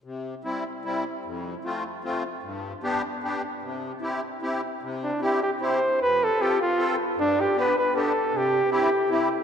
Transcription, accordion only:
X:1
M:3/4
L:1/8
Q:"Swing" 1/4=152
K:C
V:1 name="Accordion"
C,2 [G,CE] z [G,CE] z | F,,2 [A,CF] z [A,CF] z | G,,2 [B,DG] z [B,DG] z | C,2 [CEG] z [CEG] z |
C,2 [CEG] z [CEG] z | F,,2 [CFA] z [CFA] z | G,,2 [B,DG] z [B,DG] z | C,2 [CEG] z [CEG] z |]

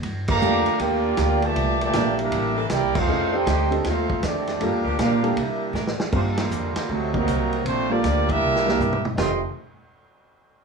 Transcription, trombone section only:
X:1
M:4/4
L:1/8
Q:"Swing" 1/4=158
K:Cmix
V:1 name="Trombone section"
z [D,F,B,]3 [B,DG]3 [B,,E,A,]- | [B,,E,A,] [B,,E,A,]2 [G,B,E]2 z [B,EG] [A,CF]- | [A,CF] [C_EG]2 z [A,CF]2 [_E,A,D]2 | [B,DF]2 [B,DF]2 [G,B,E]2 z2 |
[K:Fmix] C [D,F,B,]3 [C,^F,A,] [C,F,B,]3 | C [F,B,D]2 [G,B,=E]4 z | [F,,C,E,A,] z6 z |]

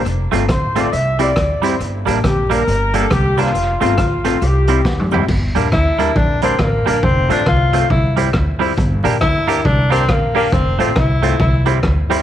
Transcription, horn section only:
X:1
M:4/4
L:1/8
Q:"Swing" 1/4=138
K:Gdor
V:1 name="Horn section"
z2 c d e d2 c | z2 G B2 A G F- | F F2 F G3 z | z8 |
z8 | z8 | z8 |]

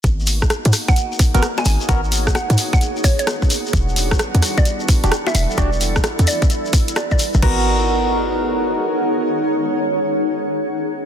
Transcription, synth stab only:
X:1
M:4/4
L:1/16
Q:"Swing 16ths" 1/4=130
K:G#m
V:1 name="Synth stab"
z8 z3 [B,FA] z4 | [B,FA] z12 z3 | z8 z3 [=DF=G] z4 | [=DF=G] z12 z3 |
[B,FA]16- | [B,FA]16 |]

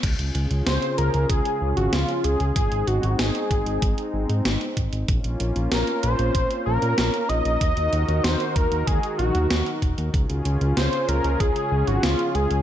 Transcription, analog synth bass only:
X:1
M:4/4
L:1/16
Q:1/4=95
K:Db
V:1 name="Analog synth bass" clef=bass
D,, D,, D,, D,, D,, z D,, D,, D,, z D,, A,,, D,, z D,, D,, | A,,, A,,, A,,, A,,, A,,, z A,,, A,,, A,,, z A,,, A,, A,,, z A,,, A,,, | B,,, B,,, B,,, B,,, B,,, z B,,, B,,, B,,, z B,,, B,, B,,, z B,,, B,,, | E,, E,, E,, E,, E,, z E,, E,, E,, z B,,, E,, E,, z E,,, E,, |
D,, D,, D,, D,, D,, z D,, D,, D,, z D,, A,,, D,, z D,, D,, |]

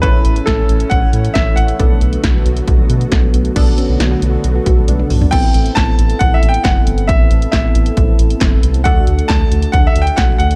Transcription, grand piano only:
X:1
M:4/4
L:1/8
Q:1/4=136
K:Bdor
V:1 name="Grand piano"
B2 A2 f2 e f- | f3 z4 z | z8 | [K:Ador] g2 a2 (3f e g f2 |
e2 e4- e z | f2 a2 (3f e g f f |]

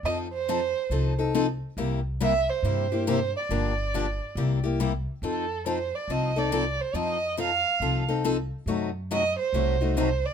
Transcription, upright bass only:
X:1
M:4/4
L:1/8
Q:"Swing" 1/4=139
K:F
V:1 name="Upright bass" clef=bass
F,,4 C,,4 | C,,4 G,,4 | G,,,4 C,,4 | F,,4 C,,4 |
F,,4 C,,4 | ^F,,4 C,,4 |]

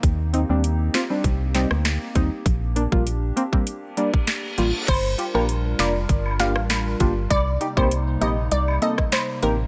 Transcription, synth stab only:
X:1
M:4/4
L:1/16
Q:1/4=99
K:Gm
V:1 name="Synth stab"
z2 [CE] [G,CD] z2 [CF] [G,CD] z2 [G,CE] z3 [G,CE] z | z2 [B,D] [G,B,F] z2 [B,C] [G,B,C] z2 [G,B,D] z3 [G,B,F] z | z2 [FG] [B,DFG] z2 [B,DFB] z3 [B,DFG] z3 [B,DFG] z | z2 [EG] [B,CEG] z2 [B,CEG] z3 [B,CEA] z3 [B,CEG] z |]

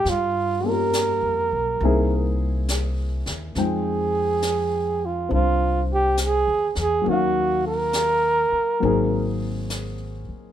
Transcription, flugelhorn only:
X:1
M:4/4
L:1/8
Q:"Swing" 1/4=68
K:Fdor
V:1 name="Flugelhorn"
F B4 z3 | A3 F F G A A | _G B4 z3 |]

